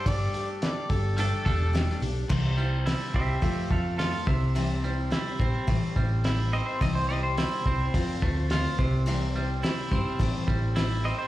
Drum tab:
CC |----------------|x---------------|----------------|----------------|
HH |o-o-o-o-o-o-o-o-|----o---o---o---|o---o---o---o---|o---o---o---o---|
SD |----o-------oo--|----o-------o---|----o-------o---|----o-------o---|
BD |o-----o---o-----|o-----o-o-o---o-|------o-o-o-----|o-----o-o-o---o-|

CC |----------------|
HH |o---o---o---o---|
SD |----o-------o---|
BD |------o-o-o-----|